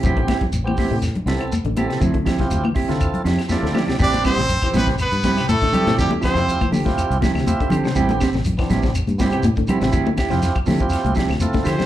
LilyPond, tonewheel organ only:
\new Staff \with { instrumentName = "Tonewheel organ" } { \time 4/4 \key a \minor \tempo 4 = 121 << { r1 | r2. d''4 | r1 | r2. e''8 c''8 |
r1 | r1 | } \\ { <b c' g'>8. r8 <b c' g'>8. r8 <b c' a'>8 r8 <b c' a'>8 | r8. <c' e' f' g'>8 r8 <c' e' f' a'>8. r8 <c' e' f' a'>8 r8 | <c' g' b'>8. r8 <c' g' c''>8. r8 <c' g' b'>8 r8 <c' g' d''>8 | r8. <c' e' f' g'>8 r8 <c' e' f' g'>8. r8 <c' e' f' g'>8 r8 |
<b c' g'>8. r8 <b c' d'>8. r8 <b c' g'>8 r8 <b c' e'>8 | r8. <c' e' f' g'>8 r8 <c' e' f' g'>8. r8 <c' e' f' a'>8 r8 | } >> }